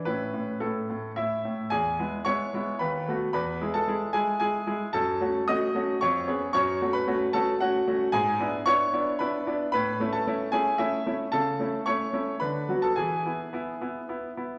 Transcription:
0.05 0.32 A2 soft
0.05 1.68 C#4 soft
0.05 1.16 E4 soft
0.05 0.57 B4 medium
0.34 0.60 A2 soft
0.60 0.88 A2 soft
0.60 1.11 A4 medium
0.90 1.16 A2 soft
1.16 1.43 A2 soft
1.16 1.69 E4 soft
1.16 1.72 E5 medium
1.45 1.71 A2 soft
1.70 1.98 E2 medium
1.70 2.22 G#4 medium
1.70 2.25 G#5 medium
1.99 2.19 G#3 soft
1.99 2.19 B3 soft
1.99 2.19 E4 soft
2.25 2.45 G#3 soft
2.25 2.45 B3 soft
2.25 2.46 E4 soft
2.25 2.76 C#5 medium
2.25 2.79 C#6 medium
2.54 2.73 G#3 soft
2.54 2.73 B3 soft
2.54 2.73 E4 soft
2.79 3.07 D#2 soft
2.79 3.30 B4 soft
2.79 3.32 B5 medium
3.08 3.27 A3 soft
3.08 3.28 B3 soft
3.08 3.28 F#4 soft
3.33 3.60 E2 medium
3.33 3.72 B4 medium
3.33 3.70 B5 medium
3.61 3.80 G#3 soft
3.61 3.81 E4 soft
3.61 3.81 G#4 soft
3.74 4.12 A4 medium
3.74 4.14 A5 medium
3.87 4.07 G#3 soft
3.87 4.07 E4 soft
3.87 4.07 G#4 soft
4.13 4.34 G#3 soft
4.13 4.34 E4 soft
4.13 4.39 G#4 medium
4.13 4.38 G#5 medium
4.40 4.60 G#3 soft
4.40 4.60 E4 soft
4.40 4.66 G#4 medium
4.40 4.94 G#5 medium
4.67 4.86 G#3 soft
4.67 4.87 E4 soft
4.67 4.87 G#4 soft
4.93 5.20 F#2 medium
4.93 5.44 A4 medium
4.93 5.43 A5 medium
5.21 5.40 A3 soft
5.21 5.40 C#4 soft
5.21 5.41 F#4 soft
5.48 5.68 A3 soft
5.48 5.68 C#4 soft
5.48 5.68 F#4 medium
5.48 5.98 D#5 medium
5.48 5.97 D#6 loud
5.75 5.94 A3 soft
5.75 5.94 C#4 soft
5.75 5.94 F#4 soft
6.01 6.27 F2 medium
6.01 6.51 C#5 medium
6.01 6.50 C#6 medium
6.27 6.47 B3 soft
6.27 6.47 C#4 soft
6.27 6.47 G#4 medium
6.53 6.80 F#2 medium
6.53 6.91 C#5 medium
6.53 6.93 C#6 loud
6.81 7.00 A3 soft
6.81 7.00 C#4 medium
6.81 7.00 F#4 medium
6.93 7.31 B4 medium
6.93 7.17 B5 medium
7.07 7.26 A3 medium
7.07 7.26 C#4 medium
7.07 7.27 F#4 medium
7.33 7.53 A3 medium
7.33 7.53 C#4 soft
7.33 7.54 F#4 medium
7.33 7.59 A4 medium
7.33 7.49 A5 medium
7.60 7.80 A3 soft
7.60 7.80 C#4 soft
7.60 7.87 F#4 medium
7.60 8.13 F#5 medium
7.88 8.06 A3 medium
7.88 8.06 C#4 soft
7.88 8.07 F#4 medium
8.12 8.39 G#2 medium
8.12 8.63 G#4 medium
8.12 8.66 G#5 loud
8.40 8.59 B3 soft
8.40 8.59 D4 soft
8.40 8.59 E4 medium
8.66 8.86 B3 medium
8.66 8.86 D4 medium
8.66 8.86 E4 medium
8.66 9.16 C#5 medium
8.66 9.19 C#6 loud
8.93 9.12 B3 soft
8.93 9.12 D4 medium
8.93 9.13 E4 medium
9.19 9.39 B3 soft
9.19 9.39 D4 medium
9.19 9.40 E4 medium
9.19 9.70 B4 medium
9.19 9.69 B5 medium
9.47 9.66 B3 soft
9.47 9.66 D4 soft
9.47 9.66 E4 soft
9.72 10.00 A2 medium
9.72 10.11 B4 medium
9.72 10.09 B5 medium
10.00 10.19 A3 soft
10.00 10.20 C#4 soft
10.00 10.20 E4 soft
10.13 10.51 A4 medium
10.13 10.53 A5 medium
10.27 10.46 A3 soft
10.27 10.46 C#4 medium
10.27 10.46 E4 medium
10.52 10.72 A3 soft
10.52 10.72 C#4 medium
10.52 10.73 E4 soft
10.52 10.78 G#4 medium
10.52 10.76 G#5 medium
10.78 10.98 A3 soft
10.78 10.99 C#4 soft
10.78 11.05 E4 medium
10.78 11.11 E5 medium
11.06 11.26 A3 soft
11.06 11.26 C#4 soft
11.06 11.26 E4 soft
11.32 11.59 C#3 medium
11.32 11.83 A4 medium
11.32 11.64 A5 medium
11.60 11.79 A3 soft
11.60 11.80 C#4 soft
11.60 11.80 E4 soft
11.86 12.07 A3 soft
11.86 12.07 C#4 soft
11.86 12.07 E4 soft
11.86 12.38 C#5 medium
11.86 12.41 C#6 medium
12.13 12.33 A3 soft
12.13 12.34 C#4 soft
12.13 12.34 E4 soft
12.40 12.68 D3 medium
12.40 12.80 B4 medium
12.40 12.82 B5 medium
12.69 12.89 F#3 soft
12.69 12.89 B3 soft
12.69 12.90 F#4 soft
12.82 12.97 A4 medium
12.82 12.97 A5 medium
12.96 13.25 E3 medium
12.96 14.06 G#4 medium
12.96 14.05 G#5 medium
13.26 13.46 B3 soft
13.26 13.46 E4 soft
13.53 13.73 B3 soft
13.53 13.74 E4 soft
13.81 14.02 B3 soft
13.81 14.02 E4 soft
14.09 14.29 B3 soft
14.09 14.30 E4 soft
14.37 14.57 B3 soft
14.37 14.57 E4 soft

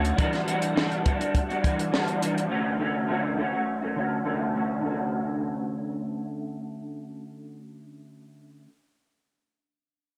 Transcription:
0.00 0.13 D2 medium
0.00 0.16 D3 medium
0.00 0.17 A3 medium
0.00 0.18 C#4 medium
0.00 0.18 F#4 medium
0.05 closed hi-hat soft
0.17 0.44 E3 medium
0.17 0.46 G3 medium
0.17 0.47 D4 medium
0.17 0.48 F#4 medium
0.17 kick loud
0.17 closed hi-hat medium
0.33 snare soft
0.33 closed hi-hat soft
0.45 0.74 E3 medium
0.45 0.75 G3 medium
0.45 0.76 D4 medium
0.45 closed hi-hat medium
0.49 0.77 F#4 medium
0.62 closed hi-hat soft
0.75 1.02 E3 medium
0.75 1.04 G3 medium
0.75 1.05 D4 medium
0.75 1.06 F#4 medium
0.75 snare loud
0.92 closed hi-hat soft
1.04 1.19 E3 medium
1.04 1.20 G3 medium
1.04 1.20 D4 medium
1.04 1.18 F#4 medium
1.04 kick medium
1.04 closed hi-hat medium
1.19 1.50 G3 soft
1.19 1.50 D4 soft
1.19 1.47 F#4 medium
1.19 closed hi-hat soft
1.35 kick medium
1.35 closed hi-hat medium
1.49 1.63 G3 soft
1.49 1.64 D4 soft
1.49 1.64 F#4 medium
1.49 closed hi-hat soft
1.63 1.91 E3 medium
1.63 1.92 G3 medium
1.63 1.93 D4 medium
1.63 1.94 F#4 medium
1.63 kick medium
1.63 closed hi-hat medium
1.79 closed hi-hat soft
1.92 2.19 E3 medium
1.92 2.21 G3 medium
1.92 2.22 D4 medium
1.92 2.23 F#4 medium
1.92 snare medium
2.08 closed hi-hat soft
2.21 2.49 E3 medium
2.21 2.50 G3 medium
2.21 2.51 D4 medium
2.21 2.51 F#4 medium
2.21 closed hi-hat medium
2.38 closed hi-hat soft
2.49 2.78 D3 medium
2.49 2.79 A3 medium
2.49 2.80 C#4 medium
2.49 2.81 F#4 medium
2.79 3.07 D3 medium
2.79 3.08 A3 medium
2.79 3.09 C#4 medium
2.79 3.10 F#4 medium
3.08 3.36 D3 medium
3.08 3.37 A3 medium
3.08 3.39 C#4 medium
3.08 3.39 F#4 medium
3.37 3.52 D3 medium
3.37 3.53 A3 medium
3.37 3.53 C#4 medium
3.37 3.51 F#4 medium
3.52 3.82 C#4 soft
3.52 3.81 F#4 soft
3.56 3.84 A3 soft
3.82 3.96 A3 soft
3.82 3.97 C#4 medium
3.82 3.97 F#4 medium
3.96 4.24 D3 medium
3.96 4.25 A3 medium
3.96 4.25 C#4 medium
3.96 4.26 F#4 medium
4.25 4.52 D3 medium
4.25 4.54 A3 medium
4.25 4.55 C#4 medium
4.25 4.56 F#4 medium
4.53 4.80 D3 soft
4.53 4.83 A3 medium
4.53 4.85 C#4 medium
4.58 4.85 F#4 medium
4.81 8.66 D3 medium
4.81 8.67 A3 medium
4.87 8.69 C#4 medium
4.87 8.70 F#4 medium

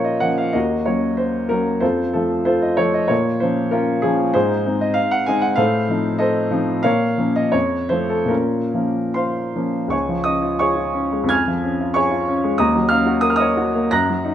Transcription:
0.00 0.57 A#2 soft
0.00 0.18 F3 soft
0.00 0.19 A#3 soft
0.00 0.19 C#4 soft
0.00 0.57 F4 medium
0.00 0.54 A#4 medium
0.00 0.57 C5 medium
0.00 0.57 C#5 medium
0.04 0.22 D#5 medium
0.20 0.51 F3 soft
0.20 0.51 A#3 soft
0.20 0.51 C#4 soft
0.20 0.38 F#5 medium
0.38 0.54 F5 medium
0.53 0.86 D#2 medium
0.53 0.85 F#4 medium
0.53 0.84 A#4 medium
0.53 0.86 D#5 medium
0.86 1.47 F#3 soft
0.86 1.47 A#3 soft
0.86 1.48 C#4 soft
0.86 1.18 C#5 medium
1.17 1.50 C5 medium
1.49 1.80 F#3 soft
1.49 1.80 A#3 soft
1.49 1.80 C#4 soft
1.49 1.82 A#4 medium
1.80 2.14 F2 medium
1.80 2.13 F4 soft
1.80 2.12 A4 medium
1.80 2.14 C5 medium
2.14 2.75 F3 soft
2.14 2.76 A3 soft
2.14 2.45 F4 soft
2.14 2.45 A4 medium
2.45 2.62 F4 medium
2.45 2.62 A4 medium
2.45 2.62 C5 medium
2.62 2.79 D#5 medium
2.77 3.07 F3 soft
2.77 3.07 A3 soft
2.77 3.07 F4 soft
2.77 2.94 C#5 medium
2.94 3.10 D#5 medium
3.08 3.41 A#2 medium
3.08 3.39 F4 soft
3.08 3.39 A#4 soft
3.08 3.41 C#5 medium
3.40 4.00 F3 soft
3.40 4.00 A#3 soft
3.40 3.71 C#4 soft
3.40 3.72 C5 medium
3.71 4.01 C#4 medium
3.71 4.01 F4 medium
3.71 4.03 A#4 medium
4.02 4.31 F3 soft
4.02 4.32 A#3 soft
4.02 4.32 C#4 medium
4.02 4.33 G#4 medium
4.34 4.65 G#2 medium
4.34 4.65 D#4 medium
4.34 4.78 G#4 medium
4.34 4.81 C5 medium
4.66 5.23 G#3 soft
4.66 5.23 C4 soft
4.66 5.24 D#4 soft
4.81 4.96 D#5 medium
4.94 5.11 F5 medium
5.11 5.27 F#5 medium
5.26 5.56 G#3 soft
5.26 5.56 C4 medium
5.26 5.56 D#4 medium
5.26 5.43 G#5 medium
5.42 5.58 F#5 medium
5.56 5.89 A2 medium
5.56 6.17 A4 medium
5.56 6.17 C5 medium
5.56 6.20 F5 medium
5.89 6.48 F3 soft
5.89 6.49 C4 soft
5.89 6.49 D#4 medium
6.19 6.80 A4 medium
6.19 6.81 C5 medium
6.19 6.84 D#5 medium
6.51 6.81 F3 soft
6.51 6.81 C4 medium
6.51 6.82 D#4 medium
6.83 7.18 A#2 medium
6.83 7.32 A#4 medium
6.83 7.32 C#5 medium
6.83 7.35 F5 medium
7.18 7.50 F3 soft
7.18 7.51 A#3 soft
7.18 7.51 C#4 medium
7.36 7.54 D#5 medium
7.52 7.89 F2 medium
7.52 7.90 C#5 medium
7.89 8.27 F3 soft
7.89 8.27 A3 soft
7.89 8.27 C4 soft
7.89 8.10 C5 medium
8.10 8.31 A4 medium
8.25 8.70 A#2 soft
8.25 9.16 A#4 medium
8.29 8.74 C#4 soft
8.29 9.12 F4 soft
8.74 9.53 F3 soft
8.74 9.53 A#3 soft
8.74 9.53 C#4 soft
9.14 9.88 C5 medium
9.14 9.88 F5 medium
9.14 9.91 C6 medium
9.56 9.88 F3 soft
9.56 9.88 A#3 soft
9.56 9.89 C#4 soft
9.88 11.24 C#2 soft
9.88 10.23 C#5 soft
9.88 10.23 G#5 soft
9.88 10.24 C#6 medium
10.09 10.35 F3 soft
10.24 10.52 C#4 soft
10.24 10.56 D#5 medium
10.24 10.58 D#6 medium
10.42 10.69 F4 soft
10.59 10.88 G#4 medium
10.59 11.27 C#5 medium
10.59 11.27 G#5 medium
10.59 11.31 C#6 medium
10.76 11.06 F4 soft
10.94 11.23 C#4 medium
11.12 11.30 G#3 soft
11.24 12.52 F2 medium
11.29 11.92 G#5 medium
11.29 11.91 F6 medium
11.29 11.95 G#6 medium
11.47 11.73 F3 soft
11.63 11.89 C#4 medium
11.80 12.05 F4 soft
11.94 12.21 G#4 soft
11.94 12.55 C#5 medium
11.94 12.55 G#5 medium
11.94 12.58 C#6 medium
12.11 12.37 F4 medium
12.28 12.53 C#4 medium
12.44 12.59 G#3 medium
12.58 13.88 D#2 medium
12.58 12.88 D#5 medium
12.58 12.88 A#5 medium
12.58 12.90 D#6 medium
12.75 13.00 F#3 soft
12.89 13.16 C#4 medium
12.89 13.20 F5 medium
12.89 13.21 F6 medium
13.06 13.32 F#4 medium
13.21 13.49 A#4 medium
13.21 13.29 D#6 medium
13.30 13.37 F6 medium
13.36 13.88 D#5 medium
13.36 13.91 D#6 medium
13.40 13.68 C#5 medium
13.57 13.85 F#4 medium
13.75 13.92 A#3 medium
13.91 14.34 F#2 medium
13.91 14.34 A#5 medium
13.91 14.34 F#6 medium
13.91 14.34 A#6 medium
14.09 14.34 F#3 medium
14.25 14.34 D#4 medium

